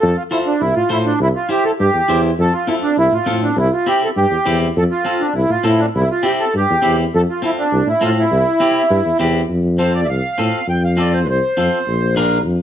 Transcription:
0.01 tuba F2, accordion A4
0.16 accordion F4
0.31 accordion E4, clean electric guitar F4 A4 C5
0.47 accordion D4
0.60 tuba C2, accordion E4
0.76 tuba A2, accordion F4
0.89 tuba A2, accordion E4, clean electric guitar F4 A4 C5
1.06 accordion D4
1.20 tuba C2, accordion E4
1.36 accordion F4
1.49 clean electric guitar E4 G4 C5, accordion G4
1.65 accordion A4
1.80 tuba G2, accordion G4
1.94 tuba E2
2.08 tuba E2, clean electric guitar E4 G4 C5
2.38 tuba F2, accordion A4
2.53 accordion F4
2.67 clean electric guitar C4 F4 A4, accordion E4
2.83 accordion D4
2.97 tuba C2, accordion E4
3.12 tuba A2, accordion F4
3.26 tuba A2, clean electric guitar C4 F4 A4
3.43 accordion D4
3.56 tuba C2, accordion E4
3.73 accordion F4
3.86 clean electric guitar C4 E4 G4, accordion G4
4.04 accordion A4
4.16 tuba G2, accordion G4
4.30 tuba E2
4.45 tuba E2, clean electric guitar C4 E4 G4
4.76 tuba F2, accordion A4
4.91 accordion F4
5.05 clean electric guitar C4 F4 A4
5.20 accordion D4
5.34 tuba C2, accordion E4
5.49 tuba A2, accordion F4
5.63 tuba A2, clean electric guitar C4 F4 A4, accordion E4
5.79 accordion D4
5.95 tuba C2, accordion E4
6.11 accordion F4
6.23 clean electric guitar C4 E4 G4, accordion G4
6.40 accordion A4
6.54 tuba G2, accordion G4
6.70 tuba E2
6.82 tuba E2, clean electric guitar C4 E4 G4
7.14 tuba F2, accordion A4
7.29 accordion F4
7.42 clean electric guitar C4 F4 A4, accordion E4
7.59 accordion D4
7.72 tuba C2
7.86 tuba A2, accordion E4
8.01 tuba A2, clean electric guitar C4 F4 A4, accordion F4
8.19 accordion E4
8.31 tuba C2
8.60 clean electric guitar C4 E4 G4
8.90 tuba G2
9.05 tuba E2
9.19 tuba E2, clean electric guitar C4 E4 G4
9.49 tuba F2
9.78 clean electric guitar C4 F4 A4, accordion C5
9.95 accordion D5
10.05 tuba C2, accordion E5
10.09 accordion F5
10.38 tuba A2, clean electric guitar C4 F4 A4
10.67 tuba F2, accordion G5
10.85 accordion F5
10.97 clean electric guitar C4 F4 A4, accordion D5
11.13 accordion C5
11.25 tuba C2, accordion B4
11.30 accordion C5
11.57 tuba F2, clean electric guitar C4 F4 A4
11.87 tuba A#1
12.16 clean electric guitar D4 F4 A#4
12.46 tuba F2

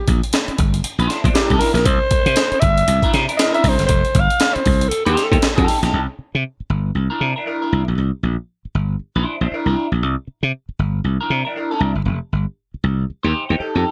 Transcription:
0.08 slap bass A#1, kick, closed hi-hat
0.23 closed hi-hat
0.33 snare, closed hi-hat
0.48 muted slap bass stroke, closed hi-hat
0.58 slap bass G1, kick, closed hi-hat
0.74 closed hi-hat
0.84 muted slap bass stroke, closed hi-hat
0.98 slap bass A#1, clean electric guitar D4 E4 C5, closed hi-hat
1.10 snare, closed hi-hat
1.24 slap bass A#1, clean electric guitar D4 E4 C5, kick, closed hi-hat
1.34 clean electric guitar D4 E4 A#4, alto saxophone G4, snare, closed hi-hat
1.50 slap bass C2, clean electric guitar D4 E4 A#4, kick, closed hi-hat
1.59 alto saxophone A#4, snare, open hi-hat
1.74 slap bass A#1, alto saxophone A#4, snare, closed hi-hat
1.86 slap bass C2, alto saxophone C5, kick, closed hi-hat
2.11 muted slap bass stroke, kick, closed hi-hat
2.26 slap bass C3, closed hi-hat
2.36 snare, closed hi-hat
2.52 muted slap bass stroke, closed hi-hat
2.60 slap bass G1, alto saxophone E5, kick, closed hi-hat
2.78 closed hi-hat
2.88 slap bass C2, closed hi-hat
3.02 clean electric guitar D4 E4 A#4, kick, closed hi-hat
3.14 slap bass C3, snare, closed hi-hat
3.29 clean electric guitar D4 E4 A#4, closed hi-hat
3.37 clean electric guitar D4 E4 A#4, alto saxophone D#5, snare, closed hi-hat
3.52 clean electric guitar D4 E4 A#4, alto saxophone E5, closed hi-hat
3.64 slap bass C2, kick, snare, open hi-hat
3.69 alto saxophone C5
3.79 slap bass G1, snare, closed hi-hat
3.86 slap bass F1, alto saxophone C5, kick, closed hi-hat
4.05 closed hi-hat
4.15 slap bass G1, kick, closed hi-hat
4.20 alto saxophone F5
4.30 closed hi-hat
4.40 snare, closed hi-hat
4.55 alto saxophone C5, muted slap bass stroke, closed hi-hat
4.66 slap bass C2, kick, open hi-hat
4.81 closed hi-hat
4.89 alto saxophone A4, muted slap bass stroke, closed hi-hat
5.05 slap bass D#2, clean electric guitar D#4 G4 C5, alto saxophone G4, closed hi-hat
5.17 snare, closed hi-hat
5.24 alto saxophone A4
5.31 slap bass D#2, clean electric guitar D#4 G4 C5, kick, closed hi-hat
5.42 muted slap bass stroke, snare, closed hi-hat
5.56 slap bass F2, clean electric guitar D#4 G4 A4, kick, closed hi-hat
5.68 snare, open hi-hat
5.83 slap bass A#1, clean electric guitar D#4 G4 A4, snare, closed hi-hat
5.93 slap bass C2
6.19 muted slap bass stroke
6.35 slap bass C3
6.60 muted slap bass stroke
6.70 slap bass G1
6.95 slap bass C2
7.10 clean electric guitar D4 E4 A#4
7.21 slap bass C3
7.36 clean electric guitar D4 E4 A#4
7.46 clean electric guitar D4 E4 A#4
7.62 clean electric guitar D4 E4 A#4
7.73 slap bass C2
7.88 slap bass A#1
7.98 slap bass C2
8.23 slap bass A#1
8.65 muted slap bass stroke
8.75 slap bass G1
8.99 muted slap bass stroke
9.16 slap bass A#1, clean electric guitar D4 E4 C5
9.41 slap bass A#1, clean electric guitar D4 E4 C5
9.52 clean electric guitar D4 E4 A#4
9.66 slap bass C2, clean electric guitar D4 E4 A#4
9.92 slap bass A#1
10.03 slap bass C2
10.27 muted slap bass stroke
10.43 slap bass C3
10.69 muted slap bass stroke
10.79 slap bass G1
11.04 slap bass C2
11.21 clean electric guitar D4 E4 A#4
11.30 slap bass C3
11.45 clean electric guitar D4 E4 A#4
11.56 clean electric guitar D4 E4 A#4
11.71 clean electric guitar D4 E4 A#4
11.80 slap bass C2
11.95 slap bass G1
12.05 slap bass F1
12.33 slap bass G1
12.74 muted slap bass stroke
12.84 slap bass C2
13.10 muted slap bass stroke
13.23 slap bass D#2, clean electric guitar D#4 G4 C5
13.49 slap bass D#2, clean electric guitar D#4 G4 C5
13.59 clean electric guitar D#4 G4 A4, muted slap bass stroke
13.75 slap bass F2, clean electric guitar D#4 G4 A4

